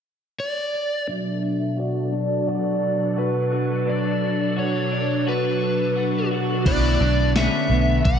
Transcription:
0.40 D5
1.07 B2 F#3 D4 A4 E5
1.77 F#4 D5
2.12 D4
2.47 F#4 D5
3.17 F#4 B4
3.52 F#4
3.87 D4 D5
4.56 F#4 C#5
4.92 D4
5.27 F#4 B4
5.96 F#4
6.31 F#4
6.64 B1 B2 D3 A3 B3 D4 E4 F#4 B4 D5, kick, closed hi-hat, crash
6.99 B1 D4 F#4 B4
7.04 D4
7.34 B2 A3 C#4 D4 F#4 B4 E5, snare, closed hi-hat, tambourine
7.68 B1 B3 F#4 B4
7.74 D4
8.02 B1 A3 D4 F#4 F#5, kick, closed hi-hat
8.08 B4

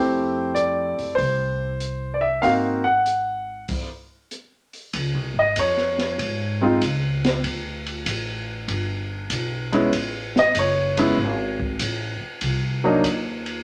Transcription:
Already playing: F2 A3 C4 E4 G4 C5
0.55 D5, closed hi-hat
0.99 F#2, open hi-hat
1.15 C2 C5, kick, open hi-hat
1.80 closed hi-hat
2.14 D5
2.21 E5
2.42 G#1 A#3 C4 D#4 F#4 F5, kick, open hi-hat
2.84 F#5
3.06 closed hi-hat
3.68 kick, open hi-hat, crash
4.31 closed hi-hat
4.73 open hi-hat
4.93 C#2, kick, ride
5.14 C2
5.34 G#1
5.39 D#5
5.56 F2 C#5, kick, hi-hat pedal, ride
5.77 snare
5.98 snare, ride
6.18 G#2, kick, ride
6.61 G#3 C4 D#4 F4
6.81 C#2, kick, hi-hat pedal, ride
7.24 snare, ride
7.44 D2, kick, ride
7.86 ride
8.06 A1, kick, hi-hat pedal, ride
8.68 G1, kick, ride
9.30 B1, kick, hi-hat pedal, ride
9.72 G#3 B3 C#4 E4, ride
9.93 A1, kick, ride
10.36 D#5, snare
10.55 F#1, kick, hi-hat pedal, ride
10.59 C#5
10.97 G#3 B3 C#4 E4, ride
11.17 G#1, kick
11.60 kick
11.79 A1, kick, hi-hat pedal, ride
12.21 muted upright bass stroke
12.41 C2, kick, ride
12.84 F#3 A#3 D4 D#4
13.04 D#2, kick, hi-hat pedal, ride
13.46 ride

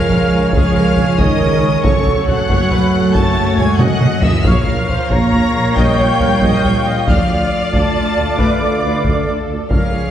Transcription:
Already playing: F3 G#3 C#4 G#4 A#4 C#5 F5 G#5 F6
0.10 C#2, taiko low
0.32 C#2
0.53 C#2 F3 G#4 F5 F6, taiko
0.75 C#2 A#4
0.97 C#2 G#4, taiko low
1.17 C#2 D#3 A#4 D#5 D#6, taiko
1.39 C#2, taiko low
1.61 C#2
1.83 F#1 F#2 C#3 A3 F#4 A4 C#5 F#5 C#6, taiko
2.07 F#1 F#2, taiko low
2.28 F#3 F#5 F#6, taiko low
2.49 F#1 F#2 C#5, taiko
2.71 F#1 F#2 B4, taiko low
2.93 F#1 F#2 A4
3.15 F#1 F#2 A3 C#5 A5 A6, taiko
3.37 F#1 F#2
3.58 F#1 F#2 G#3 G#5 G#6, taiko low
3.79 F#1 F#2 F#3 D#5 F#5 F#6, taiko mid
4.01 F#1 F#2, taiko mid
4.22 F#1 F#2 E3 E5 E6, taiko low
4.44 A#1 F3 A#3 F4 A#4 C#5 F5 F6, taiko
4.66 A#1 A#4, taiko low
4.88 C5, taiko low
5.11 A#1 A#3 C#5 A#5 A#6, taiko
5.33 A#1, taiko low
5.55 A#1
5.77 A#1 G3 D#5 G5 G6, taiko
5.98 A#1 C#5
6.20 A#1 A#4, taiko low
6.42 A#1 D#5, taiko
6.64 A#1 C#5, taiko low
6.87 A#1 D#5
7.07 D2 F3 A3 A4 D5 F5 F6, taiko
7.30 D2
7.73 D2 A3 A5 A6, taiko
7.96 D2
8.18 D2
8.39 D2 D3 B4 D5 D6, taiko
8.61 D2 A4
8.83 D2 B4
9.04 D2 A4, taiko
9.27 D2
9.48 D2
9.69 C#2 F3 G#3 C#4 F4 G#4 A#4 C#5 F5 F6, taiko
9.91 C#2 G#4

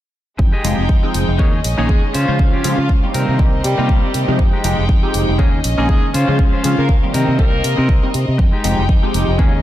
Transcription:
0.38 F2 G#3 D#4 G5, muted clean electric guitar stroke, kick
0.52 G4 G#4 D#5
0.64 F1 F3 G#3 C4 D#4 G4, open hi-hat
0.78 F1
0.89 F2, kick
1.03 F3 G#3 C4 D#4 G5
1.14 F1, muted clean electric guitar stroke, open hi-hat
1.28 F1
1.39 D#2 D#3 G#3 A#3 C#4 D#4 G#4 C#5 D#5, kick
1.64 A#1, open hi-hat
1.77 A#1 D#3 G#3 A#3 C#4 D#4 G#4 C#5
1.89 D#2 G#3 G#4, kick
2.13 C#3 C#4 F4 C5 F5, open hi-hat
2.28 C#3 F3 G#3 F4 C5
2.39 C#2, kick
2.53 C#4 F4 G4
2.64 C#3 F3 G#3 C4 F4, open hi-hat
2.78 C#3 F3 F4
2.89 C#2, kick
3.03 D#3 G3 A#3 C4 G4
3.14 C3 C4 D#4 A#4 D#5, open hi-hat
3.28 C3
3.39 C2 D#3 G3 A#3 C4 G4, kick
3.64 C3 G3 G4, open hi-hat
3.78 C3 D#3 G3 A#3 C4 D#4 F4 G4
3.89 C2, kick
4.14 C3, open hi-hat
4.28 C3 F3 G#3 C4 D#4 G4
4.38 F2 G#3 D#4 G5, muted clean electric guitar stroke, kick
4.53 G#3 D#4 G4
4.64 F1 F3 G#3 C4 D#4 G4, open hi-hat
4.78 F1
4.89 F2, kick
5.03 F3 G#3 C4 D#4 G4
5.13 F1, muted clean electric guitar stroke, open hi-hat
5.28 F1
5.38 D#2 D#3 G#3 A#3 C#4 D#4 G#4 D#5, kick
5.64 A#1, open hi-hat
5.78 A#1 D#3 G#3 A#3 C#4 D#4 G#4
5.89 D#2 G#3 G#4, kick
6.14 C#3 C#4 F4 C5 F5, open hi-hat
6.27 C#3 F3 G#3 F4 C5
6.39 C#2, kick
6.52 C#4 F4 C5
6.63 C#3 F3 G#3 C4 F4, open hi-hat
6.78 C#3 A#3 A#4
6.89 C#2, kick
7.03 D#3 G3 A#3 C4 G4
7.14 C3 C4 D#4 A#4 D#5, open hi-hat
7.28 C3
7.39 C2 D#3 G3 A#3 C4 G4 A#4, kick
7.64 C3, open hi-hat
7.77 C3 C4 D#4 A#4
7.89 C2, kick
8.03 D#3 G3 A#3 C4 A#4
8.14 C3, open hi-hat
8.28 C3
8.38 F2 G#3 D#4 G5, muted clean electric guitar stroke, kick
8.52 G#3 D#4 G4
8.64 F1 F3 G#3 C4 D#4 G4, open hi-hat
8.78 F1
8.89 F2, kick
9.03 F3 G#3 C4 D#4 G4
9.13 F1, muted clean electric guitar stroke, open hi-hat
9.28 F1
9.38 D#2 D#3 G#3 A#3 C#4 D#4 G#4 D#5, kick

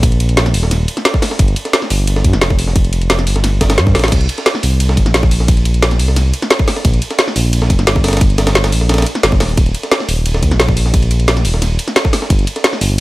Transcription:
Already playing: A#1
0.03 kick, closed hi-hat, ride
0.12 closed hi-hat
0.20 closed hi-hat, ride
0.29 closed hi-hat
0.37 snare, closed hi-hat, ride
0.46 snare, ride
0.54 D#1, open hi-hat, ride
0.63 snare
0.71 snare, closed hi-hat, ride
0.88 closed hi-hat, ride
0.97 snare, closed hi-hat
1.05 snare, closed hi-hat, ride
1.14 kick, snare
1.22 snare, open hi-hat, ride
1.31 snare
1.39 G1, kick, closed hi-hat, ride
1.48 closed hi-hat
1.56 closed hi-hat, ride
1.65 snare, closed hi-hat
1.73 snare, closed hi-hat, ride
1.82 snare
1.90 G1, open hi-hat
2.07 closed hi-hat, ride
2.16 snare
2.24 G2, kick, closed hi-hat, ride
2.33 F1, snare, closed hi-hat
2.41 snare, closed hi-hat, ride
2.50 kick, snare
2.59 open hi-hat, ride
2.67 snare
2.76 kick, closed hi-hat, ride
2.85 closed hi-hat
2.93 closed hi-hat, ride
3.02 closed hi-hat
3.10 snare, closed hi-hat, ride
3.19 snare, ride
3.27 G1, open hi-hat, ride
3.36 snare, closed hi-hat
3.44 snare, closed hi-hat, ride
3.61 kick, snare, closed hi-hat, ride
3.70 snare, closed hi-hat, ride
3.78 G2, snare, closed hi-hat, ride
3.87 kick, snare
3.95 A1, snare, open hi-hat, ride
3.99 snare, ride
4.04 snare, ride
4.08 snare, ride
4.12 C2, kick, closed hi-hat, ride, crash
4.21 closed hi-hat
4.29 closed hi-hat, ride
4.38 snare, closed hi-hat
4.46 snare, closed hi-hat, ride
4.55 snare
4.63 C2, open hi-hat, ride
4.80 closed hi-hat, ride
4.89 snare
4.97 G1, kick, closed hi-hat, ride
5.06 A#1, snare, closed hi-hat
5.14 snare, closed hi-hat, ride
5.23 kick, snare
5.31 open hi-hat, ride
5.40 snare
5.48 kick, closed hi-hat, ride
5.57 closed hi-hat
5.65 closed hi-hat, ride
5.74 closed hi-hat
5.83 snare, closed hi-hat, ride
5.91 snare, ride
5.99 C2, open hi-hat, ride
6.08 snare
6.16 snare, closed hi-hat, ride
6.33 closed hi-hat, ride
6.42 snare, closed hi-hat
6.50 snare, closed hi-hat, ride
6.59 kick, snare
6.68 snare, open hi-hat, ride
6.76 snare
6.85 A#1, kick, closed hi-hat, ride
6.94 closed hi-hat
7.02 closed hi-hat, ride
7.11 snare, closed hi-hat
7.19 snare, closed hi-hat, ride
7.28 snare
7.36 A#1, open hi-hat, ride
7.53 closed hi-hat, ride
7.62 snare
7.70 F1, kick, closed hi-hat, ride
7.79 G1, snare, closed hi-hat
7.87 snare, closed hi-hat, ride
7.96 kick, snare
8.04 snare, open hi-hat, ride
8.08 snare, ride
8.13 snare, ride
8.17 snare, ride
8.21 kick, closed hi-hat, ride
8.30 closed hi-hat
8.38 snare, closed hi-hat, ride
8.47 snare, closed hi-hat, ride
8.55 snare, closed hi-hat, ride
8.64 snare, ride
8.72 A#1, open hi-hat, ride
8.81 snare
8.89 snare, closed hi-hat, ride
8.94 snare, ride
8.98 snare, ride
9.02 snare, ride
9.06 closed hi-hat, ride
9.15 snare, closed hi-hat
9.23 G1, snare, closed hi-hat, ride
9.32 kick, snare
9.40 D#1, snare, open hi-hat, ride
9.49 ride
9.57 D#1, kick, closed hi-hat, ride
9.66 closed hi-hat
9.75 closed hi-hat, ride
9.83 snare, closed hi-hat
9.92 snare, closed hi-hat, ride
10.00 snare
10.09 D#1, open hi-hat, ride
10.26 closed hi-hat, ride
10.34 snare
10.43 D#2, kick, closed hi-hat, ride
10.51 A#1, snare, closed hi-hat
10.60 snare, closed hi-hat, ride
10.68 kick, snare
10.77 open hi-hat, ride
10.86 snare
10.94 kick, closed hi-hat, ride
11.03 closed hi-hat
11.11 closed hi-hat, ride
11.20 closed hi-hat
11.28 snare, closed hi-hat, ride
11.37 snare, ride
11.45 D#1, open hi-hat, ride
11.54 snare
11.62 snare, closed hi-hat, ride
11.79 closed hi-hat, ride
11.88 snare, closed hi-hat
11.96 snare, closed hi-hat, ride
12.05 kick, snare
12.13 snare, open hi-hat, ride
12.22 snare
12.30 G1, kick, closed hi-hat, ride
12.39 closed hi-hat
12.47 closed hi-hat, ride
12.56 snare, closed hi-hat
12.64 snare, closed hi-hat, ride
12.73 snare
12.81 G1, open hi-hat, ride

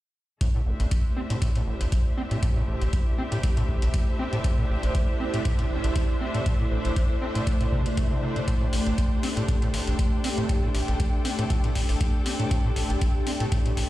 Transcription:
0.41 A2 A3 E4 C5, kick, closed hi-hat
0.49 G4
0.55 A2 E5
0.66 A1 D4 C5
0.80 A1, closed hi-hat
0.91 kick, closed hi-hat
1.17 C4
1.30 A2, closed hi-hat
1.42 A2, kick, closed hi-hat
1.55 A2, closed hi-hat
1.67 A1
1.81 A1, closed hi-hat
1.92 kick, closed hi-hat
2.17 C4
2.31 A2, closed hi-hat
2.43 A2, kick, closed hi-hat
2.56 A2
2.68 A1
2.82 A1, closed hi-hat
2.93 kick, closed hi-hat
3.18 C4
3.32 A2, closed hi-hat
3.43 A2, kick, closed hi-hat
3.57 A2, closed hi-hat
3.69 A1, kick
3.82 A1, closed hi-hat
3.94 kick, closed hi-hat
4.19 C4
4.33 A2, closed hi-hat
4.44 A2, kick, closed hi-hat
4.58 A2
4.69 A1
4.83 A1, closed hi-hat
4.95 kick, closed hi-hat
5.20 C4
5.34 A2, closed hi-hat
5.45 A2, kick, closed hi-hat
5.59 A2, closed hi-hat
5.70 A1
5.84 A1, closed hi-hat
5.96 kick, closed hi-hat
6.21 C4
6.34 A2, closed hi-hat
6.46 A2, kick, closed hi-hat
6.60 A2
6.71 A1
6.85 A1, closed hi-hat
6.96 kick, closed hi-hat
7.22 C4
7.35 A2, closed hi-hat
7.47 A2, kick, closed hi-hat
7.61 A2, closed hi-hat
7.72 C3, kick
7.86 A2, closed hi-hat
7.97 A3, kick, closed hi-hat
8.11 C3
8.23 C3
8.36 A2, closed hi-hat
8.48 A2 D4 G4, kick, closed hi-hat
8.61 A2 G5
8.73 A1, open hi-hat
8.87 A1, closed hi-hat
8.98 kick, closed hi-hat
9.23 C4, open hi-hat
9.37 A2, closed hi-hat
9.49 A2, kick, closed hi-hat
9.62 A2 A4, closed hi-hat
9.74 A1, open hi-hat
9.87 A1, closed hi-hat
9.99 kick, closed hi-hat
10.24 C4, open hi-hat
10.38 A2, closed hi-hat
10.49 A2, kick, closed hi-hat
10.63 A2
10.75 A1, open hi-hat
10.88 A1, closed hi-hat
11.00 kick, closed hi-hat
11.25 C4, open hi-hat
11.39 A2, closed hi-hat
11.50 A2, kick, closed hi-hat
11.64 A2, closed hi-hat
11.75 A1, kick, open hi-hat
11.89 A1, open hi-hat
12.01 kick, closed hi-hat
12.26 C4, open hi-hat
12.39 A2, closed hi-hat
12.51 A2, kick, closed hi-hat
12.65 A2
12.76 A1, open hi-hat
12.90 A1, closed hi-hat
13.01 kick, closed hi-hat
13.27 C4, open hi-hat
13.40 A2, closed hi-hat
13.52 A2, kick, closed hi-hat
13.66 A2, closed hi-hat
13.77 A1, open hi-hat

